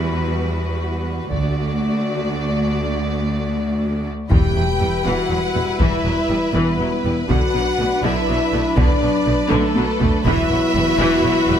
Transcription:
0.00 1.27 E2 medium
0.00 1.15 G3 soft
0.00 1.27 G3 soft
0.00 1.15 F#4 soft
0.00 1.28 F#4 soft
0.00 1.27 B4 soft
1.32 1.78 D2 soft
1.32 4.08 D2 medium
1.32 4.03 A3 soft
1.32 4.08 A3 soft
1.32 4.03 F#4 soft
1.32 4.08 F#4 soft
1.32 4.07 D5 soft
1.32 taiko medium
4.29 4.38 E1 soft
4.29 4.39 E2 medium
4.29 5.02 E2 medium
4.29 4.55 E3 soft
4.29 7.25 G3 medium
4.29 7.25 E4 soft
4.29 5.01 G4 medium
4.29 7.24 B4 soft
4.29 5.02 G5 medium
4.29 taiko medium
4.29 impact soft
4.56 4.64 E1 soft
4.56 4.64 E2 soft
4.56 4.64 F#3 soft
4.81 4.89 E1 soft
4.81 4.89 E2 soft
4.81 4.89 G3 soft
5.04 5.13 E1 soft
5.04 5.14 E2 medium
5.04 5.29 E3 medium
5.04 5.80 F#4 medium
5.04 5.79 F#5 medium
5.30 5.38 E1 soft
5.30 5.39 E2 soft
5.30 5.38 F#3 soft
5.55 5.63 E1 soft
5.55 5.63 E2 soft
5.55 5.63 G3 soft
5.79 5.89 E1 soft
5.79 5.87 E2 medium
5.79 6.03 E3 soft
5.79 6.52 E4 medium
5.79 6.53 E5 medium
5.79 taiko medium
6.04 6.12 E1 soft
6.04 6.12 E2 soft
6.04 6.13 F#3 soft
6.29 6.37 E1 soft
6.29 6.38 E2 soft
6.29 6.37 G3 soft
6.54 6.62 E1 medium
6.54 6.62 E2 medium
6.54 6.78 E3 medium
6.54 7.28 B3 medium
6.54 7.30 B4 medium
6.79 6.87 E1 soft
6.79 6.87 E2 soft
6.79 6.87 F#3 soft
7.04 7.13 E1 soft
7.04 7.13 E2 soft
7.04 7.12 G3 soft
7.28 7.37 B1 medium
7.28 7.38 B2 medium
7.28 7.53 D3 medium
7.28 10.21 D4 soft
7.28 10.22 D4 medium
7.28 8.01 F#4 medium
7.28 10.22 B4 soft
7.28 8.04 F#5 medium
7.28 taiko medium
7.32 10.23 F#3 medium
7.54 7.62 B1 soft
7.54 7.63 B2 soft
7.54 7.62 F#3 soft
7.79 7.87 B1 soft
7.79 7.87 B2 soft
7.79 7.88 A3 soft
8.04 8.12 B1 medium
8.04 8.13 B2 medium
8.04 8.26 D3 medium
8.04 8.76 E4 medium
8.04 8.76 E5 medium
8.28 8.36 B1 soft
8.28 8.38 B2 medium
8.28 8.36 F#3 medium
8.52 8.60 B1 soft
8.52 8.61 B2 medium
8.52 8.60 A3 medium
8.77 8.85 B1 medium
8.77 8.86 B2 medium
8.77 9.00 D3 medium
8.77 9.51 D4 medium
8.77 9.49 D5 medium
8.77 taiko medium
9.01 9.10 B1 soft
9.01 9.11 B2 medium
9.01 9.09 F#3 soft
9.25 9.35 B1 medium
9.25 9.34 B2 medium
9.25 9.33 A3 soft
9.49 9.59 B1 medium
9.49 9.60 B2 medium
9.49 9.73 D3 medium
9.49 10.24 A3 medium
9.49 10.26 A4 medium
9.49 taiko high medium
9.75 9.84 B1 soft
9.75 9.84 B2 medium
9.75 9.83 F#3 medium
9.75 taiko high medium
10.00 10.08 B1 medium
10.00 10.08 B2 medium
10.00 10.09 A3 medium
10.00 taiko low medium
10.25 10.33 E1 medium
10.25 10.34 E2 medium
10.25 10.49 E3 medium
10.25 11.60 F#3 medium
10.25 11.60 B3 medium
10.25 11.60 E4 medium
10.25 11.60 F#4 medium
10.25 11.60 B4 medium
10.25 11.60 E5 medium
10.25 taiko medium
10.50 10.58 E1 soft
10.50 10.58 E2 medium
10.50 10.59 F#3 medium
10.74 10.82 E1 medium
10.74 10.83 E2 medium
10.74 10.84 G3 medium
10.99 11.07 E1 medium
10.99 11.07 E2 medium
10.99 11.22 E3 medium
11.23 11.31 E1 medium
11.23 11.31 E2 medium
11.23 11.32 F#3 medium
11.47 11.55 E1 medium
11.47 11.56 E2 medium
11.47 11.57 G3 medium

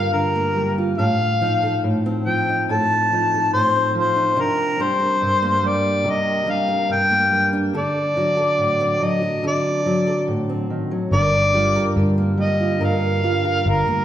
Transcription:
0.00 0.98 G2 medium
0.00 0.13 D3 soft
0.00 0.55 G3 soft
0.00 0.34 A#3 soft
0.00 0.78 F4 soft
0.00 0.94 A#4 soft
0.00 0.13 F5 medium
0.13 0.94 D3 soft
0.13 0.73 A#4 medium
0.35 0.99 A#3 soft
0.56 0.94 G3 soft
0.78 1.41 F4 soft
0.98 1.83 A2 medium
0.98 1.62 A4 soft
0.98 1.79 F5 medium
1.41 2.26 F3 soft
1.41 2.49 D#4 soft
1.63 2.68 A4 medium
1.84 2.68 A2 soft
2.06 3.75 C4 soft
2.26 3.10 F3 soft
2.26 2.65 G5 medium
2.49 3.11 D#4 soft
2.69 3.52 A2 medium
2.69 3.32 A4 soft
2.69 3.50 A5 medium
3.12 3.94 F3 soft
3.12 4.15 D#4 soft
3.34 4.33 A4 soft
3.53 4.32 A2 soft
3.53 3.92 C5 medium
3.76 4.40 C4 soft
3.95 4.79 F3 soft
3.95 4.42 C5 medium
4.16 4.32 D#4 soft
4.36 5.21 C3 medium
4.36 4.80 D4 medium
4.41 4.83 A#4 medium
4.79 5.61 G3 soft
4.79 6.07 D4 soft
4.79 5.69 C5 medium
5.00 6.04 A#4 soft
5.21 6.06 G2 soft
5.42 7.09 A#3 soft
5.62 6.45 G3 soft
5.67 6.11 D5 medium
6.04 6.89 C3 medium
6.04 6.67 A#4 soft
6.10 6.52 D#5 medium
6.46 7.30 G3 soft
6.46 7.53 D4 soft
6.51 6.91 F5 medium
6.68 7.69 A#4 soft
6.89 7.74 G2 soft
6.89 7.50 G5 medium
7.10 7.74 A#3 soft
7.31 7.69 G3 soft
7.53 8.17 D4 soft
7.73 9.42 D3 medium
7.73 8.36 A4 medium
7.78 9.05 D5 medium
8.16 8.99 F#3 soft
8.16 9.21 F#4 soft
8.37 9.43 A4 soft
8.58 9.43 A2 soft
8.81 10.48 C4 soft
9.00 9.84 F#3 soft
9.00 9.45 D#5 medium
9.22 9.85 F#4 soft
9.43 10.70 D3 medium
9.43 10.06 A4 soft
9.47 10.26 D5 medium
9.86 10.90 F#3 soft
9.86 11.08 F#4 soft
10.07 11.08 A4 soft
10.28 11.07 A2 soft
10.49 11.08 C4 soft
10.70 10.92 D#3 soft
10.91 11.13 F#3 soft
11.11 11.77 G1 medium
11.11 12.79 G2 medium
11.11 11.75 A#4 medium
11.11 11.94 D5 medium
11.54 12.37 G3 soft
11.54 12.60 F4 soft
11.76 12.79 A#4 soft
11.96 13.26 G2 medium
11.96 13.65 D3 soft
12.18 13.87 A#3 soft
12.38 13.22 G3 soft
12.38 12.86 D#5 medium
12.60 13.22 F4 soft
12.80 14.05 G2 medium
12.80 13.44 A#4 soft
12.80 13.71 F5 medium
13.23 14.05 G3 soft
13.23 14.05 F4 soft
13.45 14.05 A#4 soft
13.66 13.82 G1 medium
13.66 14.05 D3 soft
13.66 14.05 A#4 medium
13.88 14.05 A#3 soft

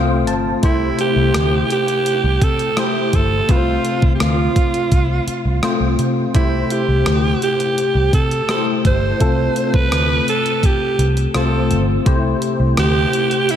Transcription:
0.00 0.27 C2 medium
0.00 0.42 A3 medium
0.00 0.42 C4 medium
0.00 0.42 F4 medium
0.00 0.43 C5 medium
0.00 0.25 F5 medium
0.27 0.54 G1 medium
0.27 0.61 A5 medium
0.27 closed hi-hat medium
0.62 0.90 C2 loud
0.62 1.66 C3 medium
0.62 1.64 A3 medium
0.62 1.64 E4 medium
0.62 0.97 E4 medium
0.62 1.65 G4 medium
0.62 1.65 C5 medium
0.62 kick medium
0.62 closed hi-hat medium
0.99 1.67 G4 loud
0.99 closed hi-hat medium
1.16 1.30 C2 medium
1.34 1.61 D2 medium
1.34 cross-stick loud
1.34 closed hi-hat medium
1.70 2.45 G4 loud
1.70 closed hi-hat medium
1.88 closed hi-hat medium
2.06 closed hi-hat medium
2.24 2.37 C2 medium
2.41 2.68 C3 medium
2.41 2.81 A4 medium
2.41 kick medium
2.41 closed hi-hat medium
2.59 closed hi-hat soft
2.77 3.28 A3 medium
2.77 3.28 E4 medium
2.77 3.28 G4 medium
2.77 3.17 G4 loud
2.77 3.28 C5 medium
2.77 cross-stick loud
2.77 closed hi-hat medium
3.13 3.40 G1 medium
3.13 3.52 A4 medium
3.13 kick medium
3.13 closed hi-hat medium
3.48 3.76 C2 medium
3.48 4.52 C3 medium
3.48 4.50 A3 medium
3.48 4.50 C4 medium
3.48 4.50 F4 medium
3.48 4.14 F4 medium
3.48 3.56 B4 medium
3.48 kick medium
3.48 closed hi-hat medium
3.56 4.54 C5 medium
3.85 closed hi-hat medium
4.02 4.16 C2 medium
4.02 kick medium
4.15 4.23 G4 medium
4.20 4.47 D2 medium
4.20 5.64 F4 medium
4.20 cross-stick loud
4.20 closed hi-hat medium
4.56 kick medium
4.56 closed hi-hat medium
4.74 closed hi-hat soft
4.91 5.18 C2 medium
4.91 kick medium
4.91 closed hi-hat medium
5.27 muted picked electric bass stroke soft
5.27 closed hi-hat medium
5.45 5.59 C2 medium
5.63 6.14 A3 medium
5.63 6.14 C4 medium
5.63 6.14 F4 medium
5.63 6.14 C5 medium
5.63 cross-stick loud
5.63 closed hi-hat medium
5.80 5.94 C2 medium
5.99 6.26 C3 medium
5.99 closed hi-hat medium
6.34 6.62 C2 medium
6.34 7.38 C3 medium
6.34 7.36 A3 medium
6.34 7.36 E4 medium
6.34 6.73 E4 medium
6.34 7.36 G4 medium
6.34 7.36 C5 medium
6.34 kick medium
6.34 closed hi-hat medium
6.70 7.42 G4 medium
6.70 closed hi-hat medium
6.88 7.02 C2 medium
7.06 7.33 D2 medium
7.06 cross-stick loud
7.06 closed hi-hat medium
7.42 8.10 G4 loud
7.42 closed hi-hat medium
7.60 closed hi-hat medium
7.78 closed hi-hat medium
7.95 8.08 C2 medium
8.13 8.40 C3 medium
8.13 8.47 A4 medium
8.13 kick medium
8.13 closed hi-hat medium
8.31 closed hi-hat soft
8.48 8.99 A3 medium
8.48 8.99 E4 medium
8.48 9.00 G4 medium
8.48 8.66 A4 medium
8.48 9.00 C5 medium
8.48 cross-stick loud
8.48 closed hi-hat medium
8.85 9.12 G1 medium
8.85 9.77 C5 medium
8.85 kick medium
8.85 closed hi-hat medium
9.20 9.47 C2 medium
9.20 10.23 C3 medium
9.20 10.21 A3 medium
9.20 10.21 C4 medium
9.20 10.22 F4 medium
9.20 10.22 A4 medium
9.20 kick medium
9.20 closed hi-hat medium
9.56 closed hi-hat medium
9.74 9.92 C2 medium
9.74 10.28 B4 loud
9.74 kick medium
9.92 10.18 D2 medium
9.92 cross-stick loud
9.92 closed hi-hat medium
10.28 10.67 A4 medium
10.28 closed hi-hat medium
10.46 closed hi-hat soft
10.63 11.09 G4 medium
10.63 kick medium
10.63 closed hi-hat medium
10.99 11.25 C2 medium
10.99 closed hi-hat medium
11.17 closed hi-hat soft
11.34 11.72 C2 medium
11.34 11.85 A3 medium
11.34 11.85 C4 medium
11.34 11.85 F4 medium
11.34 11.85 A4 medium
11.34 11.86 C5 medium
11.34 cross-stick loud
11.34 closed hi-hat medium
11.70 11.97 G1 medium
11.70 closed hi-hat medium
12.06 12.33 C2 medium
12.06 13.09 C3 medium
12.06 13.07 A3 medium
12.06 13.07 E4 medium
12.06 13.08 G4 medium
12.06 13.08 C5 medium
12.06 kick medium
12.06 closed hi-hat medium
12.42 closed hi-hat medium
12.60 12.73 C2 medium
12.77 13.04 D2 medium
12.77 13.52 G4 loud
12.77 cross-stick loud
12.77 closed hi-hat medium
13.13 closed hi-hat medium
13.31 closed hi-hat medium
13.49 13.56 E4 loud
13.49 closed hi-hat medium

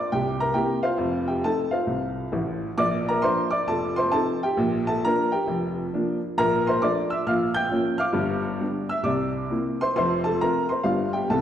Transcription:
0.00 0.10 D6 medium
0.12 0.49 C2 medium
0.12 0.49 C3 medium
0.12 0.38 G4 medium
0.12 0.39 G5 medium
0.40 0.55 A#4 soft
0.40 0.55 A#5 medium
0.54 0.79 A#3 soft
0.54 0.79 C4 soft
0.54 0.79 E4 soft
0.54 0.81 G4 medium
0.54 0.83 G5 medium
0.83 1.25 F4 medium
0.83 1.25 C5 medium
0.83 1.28 F5 medium
0.97 1.36 F1 medium
0.97 1.36 F2 medium
1.28 1.43 G4 soft
1.28 1.44 G5 medium
1.44 1.69 A3 soft
1.44 1.69 C4 soft
1.44 1.69 D#4 soft
1.44 1.71 A4 medium
1.44 1.73 A5 medium
1.71 2.58 F4 soft
1.71 2.58 C5 soft
1.71 2.61 F5 medium
1.87 2.25 C2 soft
1.87 2.26 C3 soft
2.32 2.69 A1 medium
2.32 2.68 A2 medium
2.78 3.16 A#1 medium
2.78 3.16 A#2 medium
2.78 3.05 D5 medium
2.78 3.06 D6 loud
3.08 3.23 A#4 medium
3.08 3.24 A#5 medium
3.22 3.47 F3 soft
3.22 3.48 A#3 soft
3.22 3.48 D4 soft
3.22 3.50 C5 medium
3.22 3.51 C6 medium
3.50 3.67 D5 medium
3.50 3.67 D6 medium
3.67 4.05 F1 medium
3.67 4.06 F2 medium
3.67 3.95 A4 medium
3.67 3.96 A5 medium
3.96 4.12 C5 medium
3.96 4.12 C6 medium
4.12 4.37 F3 soft
4.12 4.37 C4 soft
4.12 4.37 D#4 soft
4.12 4.40 A4 medium
4.12 4.41 A5 medium
4.43 4.85 G4 medium
4.43 4.87 G5 medium
4.57 4.95 A#1 medium
4.57 4.96 A#2 medium
4.87 5.02 A4 medium
4.87 5.03 A5 medium
5.05 5.28 F3 soft
5.05 5.29 A#3 soft
5.05 5.29 D4 soft
5.05 5.31 A#4 medium
5.05 5.32 A#5 medium
5.32 6.18 G4 medium
5.32 6.21 G5 medium
5.47 5.85 F1 medium
5.47 5.85 F2 medium
5.93 6.18 F3 soft
5.93 6.18 A#3 soft
5.93 6.18 D4 medium
6.38 6.75 A#1 medium
6.38 6.76 A#2 medium
6.38 6.65 A#4 medium
6.38 6.66 A#5 loud
6.67 6.82 C5 medium
6.67 6.82 C6 medium
6.82 7.06 F3 soft
6.82 7.07 A3 soft
6.82 7.07 D4 soft
6.82 7.09 D5 medium
6.82 7.10 D6 medium
7.10 7.26 E5 medium
7.10 7.26 E6 medium
7.26 7.64 A#1 medium
7.26 7.64 A#2 medium
7.26 7.54 F5 medium
7.26 7.55 F6 medium
7.54 7.97 G5 medium
7.54 8.00 G6 medium
7.71 7.96 F3 soft
7.71 7.96 A#3 soft
7.71 7.96 C#4 soft
7.98 8.85 F5 medium
7.98 8.86 D6 medium
7.98 8.89 F6 medium
8.13 8.53 G1 medium
8.13 8.52 G2 medium
8.61 8.85 G3 soft
8.61 8.86 B3 soft
8.61 8.86 D4 soft
8.89 9.05 E5 medium
8.89 9.06 E6 medium
9.03 9.42 C2 soft
9.03 9.43 C3 medium
9.03 9.75 D5 soft
9.03 9.78 D6 medium
9.50 9.75 A#3 soft
9.50 9.75 C4 soft
9.50 9.76 E4 soft
9.81 9.96 C5 medium
9.81 9.95 C6 medium
9.96 10.34 F1 medium
9.96 10.34 F2 medium
9.96 10.23 C5 medium
9.96 10.24 C6 medium
10.24 10.40 A4 medium
10.24 10.40 A5 medium
10.41 10.66 A3 soft
10.41 10.66 C4 soft
10.41 10.66 F4 soft
10.41 10.68 A#4 medium
10.41 10.70 A#5 medium
10.69 10.85 C5 soft
10.69 10.85 C6 medium
10.83 11.23 G1 soft
10.83 11.23 G2 medium
10.83 11.09 G3 soft
10.83 11.09 B3 soft
10.83 11.10 D4 soft
10.83 11.12 F4 medium
10.83 11.13 F5 medium
11.13 11.29 G4 soft
11.13 11.30 G5 medium
11.30 11.41 C2 soft
11.30 11.41 C3 medium
11.30 11.41 E3 soft
11.30 11.41 A#3 soft
11.30 11.41 C4 soft
11.30 11.41 A4 medium
11.30 11.41 A5 medium

